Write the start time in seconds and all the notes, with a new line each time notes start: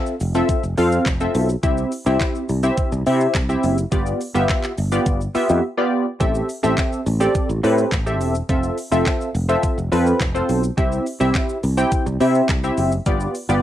Already playing: C4 F4 A4 E5
0.07 shaker
0.20 F1, open hi-hat, shaker
0.35 C4 F4 A4 E5, shaker
0.49 kick, closed hi-hat, shaker
0.63 F1, shaker
0.77 F2 C4 F4 A4 F5, open hi-hat, shaker
0.92 shaker
1.06 F1, kick, clap, closed hi-hat, shaker
1.21 C4 F4 A4 E5, shaker
1.35 B1, open hi-hat, shaker
1.49 shaker
1.63 C2 C4 E4 G4 E5, kick, closed hi-hat, shaker
1.78 shaker
1.92 open hi-hat, shaker
2.06 C2 C4 E4 G4 E5, shaker
2.21 kick, clap, closed hi-hat, shaker
2.35 shaker
2.49 C2, open hi-hat, shaker
2.63 C4 E4 G4 E5, shaker
2.77 kick, closed hi-hat, shaker
2.92 C2, shaker
3.06 C3 C4 E4 G4 E5, open hi-hat, shaker
3.21 shaker
3.35 C2, kick, clap, closed hi-hat, shaker
3.49 C4 E4 G4 E5, shaker
3.63 F#1, open hi-hat, shaker
3.78 shaker
3.92 G1 B3 F4 G4 D5, kick, closed hi-hat, shaker
4.06 shaker
4.21 open hi-hat, shaker
4.34 G1 B3 F4 G4 E5, shaker
4.49 kick, clap, closed hi-hat, shaker
4.64 clap, shaker
4.78 G1, open hi-hat, shaker
4.92 B3 F4 G4 D5, shaker
5.06 G1, kick, closed hi-hat, shaker
5.21 shaker
5.35 B3 F4 G4 E5, muted fretless electric bass stroke, open hi-hat, shaker
5.49 F2, shaker
5.77 B3 F4 G4 D5
6.20 A1 C4 G4 A4 E5, kick, closed hi-hat, shaker
6.35 shaker
6.49 open hi-hat, shaker
6.63 A1 C4 G4 A4 E5, shaker
6.78 kick, clap, closed hi-hat, shaker
6.92 shaker
7.06 A1, open hi-hat, shaker
7.20 C4 G4 A4 D5, shaker
7.35 kick, closed hi-hat, shaker
7.49 A1, shaker
7.63 A2 C4 G4 A4 B4, open hi-hat, shaker
7.78 shaker
7.92 A1, kick, clap, closed hi-hat, shaker
8.06 C4 G4 A4 E5, shaker
8.21 E1, open hi-hat, shaker
8.35 shaker
8.49 F1 C4 F4 A4 E5, kick, closed hi-hat, shaker
8.63 shaker
8.78 open hi-hat, shaker
8.92 F1 C4 F4 A4 E5, shaker
9.06 kick, clap, closed hi-hat, shaker
9.21 shaker
9.35 F1, open hi-hat, shaker
9.49 C4 F4 A4 E5, shaker
9.63 kick, closed hi-hat, shaker
9.78 F1, shaker
9.92 F2 C4 F4 A4 B4, open hi-hat, shaker
10.06 shaker
10.21 F1, kick, clap, closed hi-hat, shaker
10.34 C4 F4 A4 C5, shaker
10.49 B1, open hi-hat, shaker
10.63 shaker
10.77 C2 C4 E4 G4 E5, kick, closed hi-hat, shaker
10.92 shaker
11.06 open hi-hat, shaker
11.20 C2 C4 E4 G4 E5, shaker
11.35 kick, clap, closed hi-hat, shaker
11.49 shaker
11.63 C2, open hi-hat, shaker
11.77 C4 E4 G4 G5, shaker
11.92 kick, closed hi-hat, shaker
12.06 C2, shaker
12.20 C3 C4 E4 G4 E5, open hi-hat, shaker
12.35 shaker
12.49 C2, kick, clap, closed hi-hat, shaker
12.64 C4 E4 G4 E5, shaker
12.77 F#1, open hi-hat, shaker
12.92 shaker
13.06 G1 B3 F4 G4 D5, kick, closed hi-hat, shaker
13.20 shaker
13.35 open hi-hat, shaker
13.49 G1 B3 F4 G4 D5, shaker